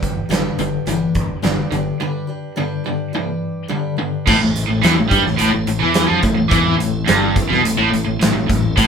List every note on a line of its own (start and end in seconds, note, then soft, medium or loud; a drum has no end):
0.00 0.21 G1 medium
0.00 0.24 G2 medium
0.00 0.25 D3 medium
0.00 0.29 G4 medium
0.00 0.30 B4 medium
0.00 kick medium
0.00 closed hi-hat medium
0.04 0.29 D4 soft
0.29 0.48 G1 medium
0.29 0.56 G2 medium
0.29 0.56 D3 medium
0.29 0.58 G3 medium
0.29 0.58 D4 medium
0.29 0.58 G4 medium
0.29 0.57 B4 loud
0.29 snare loud
0.29 closed hi-hat medium
0.58 0.77 G1 medium
0.58 0.84 G2 medium
0.58 0.85 D3 medium
0.58 0.87 D4 soft
0.58 0.87 G4 medium
0.58 0.87 B4 medium
0.58 closed hi-hat medium
0.86 1.06 G1 medium
0.86 1.38 G2 medium
0.86 1.38 E3 medium
0.86 1.42 G3 medium
0.86 1.41 D4 medium
0.86 1.43 G4 medium
0.86 1.42 B4 medium
0.86 closed hi-hat medium
1.15 1.34 G1 medium
1.15 kick medium
1.15 closed hi-hat soft
1.42 1.62 G1 medium
1.42 1.69 G2 medium
1.42 1.69 D3 medium
1.42 1.72 G3 medium
1.42 1.71 D4 medium
1.42 1.71 G4 medium
1.42 1.70 B4 medium
1.42 snare loud
1.42 closed hi-hat medium
1.71 1.90 G1 medium
1.71 1.97 G2 medium
1.71 1.98 D3 medium
1.71 1.99 D4 soft
1.71 2.00 G4 soft
1.71 2.00 B4 medium
1.71 closed hi-hat medium
2.00 2.51 G2 medium
2.00 2.51 D3 medium
2.00 2.28 G3 medium
2.00 2.28 D4 medium
2.00 2.28 G4 medium
2.00 2.26 B4 medium
2.27 2.55 D4 soft
2.27 2.56 G4 soft
2.27 2.56 B4 medium
2.56 2.82 G2 medium
2.56 2.83 D3 medium
2.56 2.84 G3 medium
2.56 2.85 D4 medium
2.56 2.85 G4 medium
2.56 2.83 B4 medium
2.84 3.11 G2 medium
2.84 3.11 D3 medium
2.84 3.12 D4 soft
2.84 3.13 G4 soft
2.84 3.13 B4 medium
3.13 3.65 G2 medium
3.13 3.65 E3 medium
3.13 3.67 G3 medium
3.13 3.68 D4 medium
3.13 3.68 G4 medium
3.13 3.68 B4 medium
3.68 3.95 G2 medium
3.68 3.96 D3 medium
3.68 3.97 G3 medium
3.68 3.98 D4 medium
3.68 3.97 G4 medium
3.68 3.95 B4 medium
3.97 4.23 G2 medium
3.97 4.24 D3 medium
3.97 4.27 D4 soft
3.97 4.26 G4 soft
3.97 4.25 B4 soft
4.27 4.40 A1 medium
4.27 4.40 A2 loud
4.27 6.50 E4 medium
4.27 6.50 A4 medium
4.27 6.50 C5 medium
4.27 kick loud
4.27 crash loud
4.41 4.67 A1 medium
4.41 4.63 A2 medium
4.56 closed hi-hat medium
4.69 4.82 A1 medium
4.69 4.83 A2 medium
4.83 4.97 E2 medium
4.83 4.97 E3 loud
4.83 snare loud
4.83 closed hi-hat medium
4.98 5.11 A1 medium
4.98 5.12 A2 medium
5.11 5.24 G2 medium
5.11 5.24 G3 medium
5.11 kick medium
5.11 closed hi-hat medium
5.26 5.39 A1 medium
5.26 5.38 A2 medium
5.26 snare soft
5.39 5.53 A1 medium
5.39 5.52 A2 loud
5.39 closed hi-hat medium
5.55 5.67 A1 medium
5.55 5.67 A2 medium
5.67 5.81 A1 medium
5.67 5.82 A2 medium
5.67 closed hi-hat medium
5.83 6.08 E2 medium
5.83 6.09 E3 loud
5.94 snare loud
5.94 closed hi-hat medium
6.10 6.23 F2 medium
6.10 6.23 F3 loud
6.23 6.37 A1 medium
6.23 6.37 A2 medium
6.23 kick medium
6.23 closed hi-hat medium
6.38 6.51 A1 medium
6.38 6.50 A2 medium
6.51 6.78 E2 medium
6.51 6.79 E3 loud
6.51 8.75 C4 medium
6.51 8.75 E4 medium
6.51 8.75 A4 medium
6.51 kick loud
6.51 closed hi-hat medium
6.80 7.07 A1 medium
6.80 7.02 A2 medium
6.80 closed hi-hat medium
7.08 7.35 G1 medium
7.08 7.35 G2 loud
7.08 snare loud
7.08 closed hi-hat medium
7.36 muted overdriven electric guitar stroke medium
7.36 muted fingered electric bass stroke soft
7.36 kick medium
7.36 closed hi-hat medium
7.50 7.64 B1 loud
7.50 7.63 B2 loud
7.50 snare soft
7.65 7.78 A1 medium
7.65 7.77 A2 medium
7.65 closed hi-hat loud
7.78 7.92 A1 medium
7.78 7.90 A2 loud
7.91 8.06 A1 medium
7.91 8.05 A2 medium
7.91 closed hi-hat medium
8.06 8.21 A1 medium
8.06 8.19 A2 medium
8.20 8.34 A1 medium
8.20 8.33 A2 medium
8.20 snare loud
8.20 closed hi-hat loud
8.34 8.48 A1 medium
8.34 8.48 A2 medium
8.49 8.76 A1 medium
8.49 8.72 A2 medium
8.49 kick medium
8.49 closed hi-hat medium
8.77 8.87 A1 medium
8.77 8.87 A2 loud
8.77 8.87 A3 medium
8.77 8.87 C4 medium
8.77 8.87 E4 medium
8.77 kick loud
8.77 closed hi-hat loud